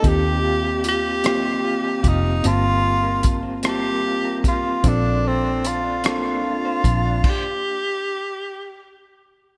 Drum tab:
CC |------|------|------|x-----|
HH |x-xx-x|x-xx-x|x-xx-x|------|
SD |---r--|---r--|---r--|------|
BD |o----o|--o--o|o----o|o-----|